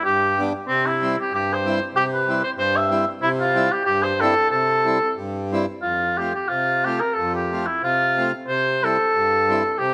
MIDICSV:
0, 0, Header, 1, 3, 480
1, 0, Start_track
1, 0, Key_signature, 0, "major"
1, 0, Tempo, 635593
1, 520, Time_signature, 2, 2, 24, 8
1, 3393, Tempo, 666667
1, 4344, Key_signature, -1, "major"
1, 5793, Tempo, 653595
1, 7345, End_track
2, 0, Start_track
2, 0, Title_t, "Cor anglais"
2, 0, Program_c, 0, 69
2, 33, Note_on_c, 0, 67, 81
2, 313, Note_off_c, 0, 67, 0
2, 512, Note_on_c, 0, 60, 82
2, 654, Note_on_c, 0, 64, 59
2, 665, Note_off_c, 0, 60, 0
2, 893, Note_off_c, 0, 64, 0
2, 906, Note_on_c, 0, 67, 60
2, 1002, Note_off_c, 0, 67, 0
2, 1019, Note_on_c, 0, 67, 73
2, 1157, Note_on_c, 0, 72, 67
2, 1169, Note_off_c, 0, 67, 0
2, 1383, Note_off_c, 0, 72, 0
2, 1483, Note_on_c, 0, 67, 105
2, 1540, Note_off_c, 0, 67, 0
2, 1614, Note_on_c, 0, 71, 63
2, 1831, Note_off_c, 0, 71, 0
2, 1843, Note_on_c, 0, 72, 73
2, 1892, Note_off_c, 0, 72, 0
2, 1955, Note_on_c, 0, 72, 97
2, 2087, Note_on_c, 0, 76, 76
2, 2098, Note_off_c, 0, 72, 0
2, 2322, Note_off_c, 0, 76, 0
2, 2431, Note_on_c, 0, 64, 103
2, 2488, Note_off_c, 0, 64, 0
2, 2569, Note_on_c, 0, 65, 71
2, 2814, Note_on_c, 0, 67, 69
2, 2825, Note_off_c, 0, 65, 0
2, 2905, Note_off_c, 0, 67, 0
2, 2910, Note_on_c, 0, 67, 91
2, 3044, Note_on_c, 0, 72, 74
2, 3055, Note_off_c, 0, 67, 0
2, 3175, Note_on_c, 0, 69, 95
2, 3186, Note_off_c, 0, 72, 0
2, 3392, Note_off_c, 0, 69, 0
2, 3396, Note_on_c, 0, 69, 75
2, 3835, Note_off_c, 0, 69, 0
2, 4349, Note_on_c, 0, 65, 62
2, 4606, Note_on_c, 0, 67, 56
2, 4617, Note_off_c, 0, 65, 0
2, 4718, Note_off_c, 0, 67, 0
2, 4727, Note_on_c, 0, 67, 55
2, 4829, Note_on_c, 0, 65, 62
2, 4840, Note_off_c, 0, 67, 0
2, 5092, Note_on_c, 0, 67, 71
2, 5103, Note_off_c, 0, 65, 0
2, 5197, Note_on_c, 0, 70, 60
2, 5208, Note_off_c, 0, 67, 0
2, 5299, Note_on_c, 0, 69, 76
2, 5310, Note_off_c, 0, 70, 0
2, 5437, Note_off_c, 0, 69, 0
2, 5448, Note_on_c, 0, 67, 53
2, 5675, Note_on_c, 0, 64, 57
2, 5686, Note_off_c, 0, 67, 0
2, 5789, Note_off_c, 0, 64, 0
2, 5803, Note_on_c, 0, 65, 75
2, 6143, Note_off_c, 0, 65, 0
2, 6271, Note_on_c, 0, 72, 87
2, 6538, Note_on_c, 0, 69, 83
2, 6549, Note_off_c, 0, 72, 0
2, 7187, Note_off_c, 0, 69, 0
2, 7187, Note_on_c, 0, 69, 57
2, 7230, Note_on_c, 0, 67, 97
2, 7241, Note_off_c, 0, 69, 0
2, 7345, Note_off_c, 0, 67, 0
2, 7345, End_track
3, 0, Start_track
3, 0, Title_t, "Accordion"
3, 0, Program_c, 1, 21
3, 39, Note_on_c, 1, 43, 61
3, 288, Note_on_c, 1, 55, 58
3, 296, Note_on_c, 1, 59, 51
3, 300, Note_on_c, 1, 62, 56
3, 393, Note_off_c, 1, 55, 0
3, 397, Note_off_c, 1, 59, 0
3, 399, Note_off_c, 1, 62, 0
3, 405, Note_off_c, 1, 43, 0
3, 516, Note_on_c, 1, 48, 57
3, 764, Note_on_c, 1, 55, 43
3, 769, Note_on_c, 1, 60, 42
3, 776, Note_on_c, 1, 64, 57
3, 872, Note_off_c, 1, 55, 0
3, 874, Note_off_c, 1, 60, 0
3, 878, Note_off_c, 1, 64, 0
3, 883, Note_off_c, 1, 48, 0
3, 991, Note_on_c, 1, 43, 64
3, 1249, Note_on_c, 1, 60, 50
3, 1250, Note_on_c, 1, 55, 61
3, 1260, Note_on_c, 1, 64, 64
3, 1353, Note_off_c, 1, 60, 0
3, 1354, Note_off_c, 1, 55, 0
3, 1359, Note_off_c, 1, 43, 0
3, 1359, Note_off_c, 1, 64, 0
3, 1466, Note_on_c, 1, 48, 66
3, 1722, Note_on_c, 1, 55, 44
3, 1729, Note_on_c, 1, 60, 56
3, 1732, Note_on_c, 1, 64, 52
3, 1827, Note_off_c, 1, 55, 0
3, 1830, Note_off_c, 1, 60, 0
3, 1832, Note_off_c, 1, 48, 0
3, 1832, Note_off_c, 1, 64, 0
3, 1935, Note_on_c, 1, 43, 70
3, 2195, Note_on_c, 1, 55, 60
3, 2197, Note_on_c, 1, 60, 61
3, 2203, Note_on_c, 1, 64, 60
3, 2301, Note_off_c, 1, 55, 0
3, 2302, Note_off_c, 1, 60, 0
3, 2304, Note_off_c, 1, 43, 0
3, 2305, Note_off_c, 1, 64, 0
3, 2425, Note_on_c, 1, 48, 67
3, 2679, Note_on_c, 1, 55, 66
3, 2682, Note_on_c, 1, 60, 53
3, 2692, Note_on_c, 1, 64, 55
3, 2783, Note_off_c, 1, 55, 0
3, 2785, Note_off_c, 1, 60, 0
3, 2789, Note_off_c, 1, 64, 0
3, 2791, Note_off_c, 1, 48, 0
3, 2913, Note_on_c, 1, 43, 64
3, 3181, Note_on_c, 1, 55, 57
3, 3187, Note_on_c, 1, 60, 58
3, 3193, Note_on_c, 1, 64, 71
3, 3276, Note_off_c, 1, 55, 0
3, 3278, Note_off_c, 1, 43, 0
3, 3279, Note_off_c, 1, 60, 0
3, 3282, Note_off_c, 1, 64, 0
3, 3405, Note_on_c, 1, 48, 55
3, 3648, Note_on_c, 1, 55, 47
3, 3652, Note_on_c, 1, 60, 43
3, 3658, Note_on_c, 1, 64, 50
3, 3744, Note_off_c, 1, 55, 0
3, 3746, Note_off_c, 1, 60, 0
3, 3749, Note_off_c, 1, 64, 0
3, 3754, Note_off_c, 1, 48, 0
3, 3877, Note_on_c, 1, 43, 55
3, 4133, Note_on_c, 1, 55, 67
3, 4136, Note_on_c, 1, 60, 60
3, 4143, Note_on_c, 1, 64, 72
3, 4227, Note_off_c, 1, 55, 0
3, 4229, Note_off_c, 1, 60, 0
3, 4233, Note_off_c, 1, 64, 0
3, 4236, Note_off_c, 1, 43, 0
3, 4354, Note_on_c, 1, 41, 48
3, 4614, Note_on_c, 1, 57, 36
3, 4623, Note_on_c, 1, 60, 32
3, 4627, Note_on_c, 1, 65, 44
3, 4710, Note_off_c, 1, 57, 0
3, 4715, Note_off_c, 1, 60, 0
3, 4717, Note_off_c, 1, 41, 0
3, 4717, Note_off_c, 1, 65, 0
3, 4836, Note_on_c, 1, 48, 52
3, 5092, Note_on_c, 1, 57, 52
3, 5096, Note_on_c, 1, 60, 47
3, 5107, Note_on_c, 1, 65, 47
3, 5192, Note_off_c, 1, 57, 0
3, 5194, Note_off_c, 1, 60, 0
3, 5199, Note_off_c, 1, 65, 0
3, 5201, Note_off_c, 1, 48, 0
3, 5325, Note_on_c, 1, 41, 61
3, 5571, Note_on_c, 1, 57, 40
3, 5580, Note_on_c, 1, 60, 40
3, 5581, Note_on_c, 1, 65, 50
3, 5671, Note_off_c, 1, 57, 0
3, 5676, Note_off_c, 1, 60, 0
3, 5676, Note_off_c, 1, 65, 0
3, 5684, Note_off_c, 1, 41, 0
3, 5792, Note_on_c, 1, 48, 54
3, 6046, Note_on_c, 1, 57, 51
3, 6048, Note_on_c, 1, 60, 47
3, 6062, Note_on_c, 1, 65, 59
3, 6149, Note_off_c, 1, 57, 0
3, 6150, Note_off_c, 1, 60, 0
3, 6157, Note_off_c, 1, 48, 0
3, 6157, Note_off_c, 1, 65, 0
3, 6271, Note_on_c, 1, 48, 61
3, 6530, Note_on_c, 1, 55, 52
3, 6537, Note_on_c, 1, 60, 50
3, 6541, Note_on_c, 1, 64, 51
3, 6631, Note_off_c, 1, 55, 0
3, 6634, Note_off_c, 1, 60, 0
3, 6636, Note_off_c, 1, 48, 0
3, 6636, Note_off_c, 1, 64, 0
3, 6758, Note_on_c, 1, 43, 52
3, 7011, Note_on_c, 1, 55, 51
3, 7019, Note_on_c, 1, 60, 54
3, 7029, Note_on_c, 1, 64, 67
3, 7111, Note_off_c, 1, 55, 0
3, 7115, Note_off_c, 1, 60, 0
3, 7120, Note_off_c, 1, 43, 0
3, 7120, Note_off_c, 1, 64, 0
3, 7241, Note_on_c, 1, 48, 61
3, 7345, Note_off_c, 1, 48, 0
3, 7345, End_track
0, 0, End_of_file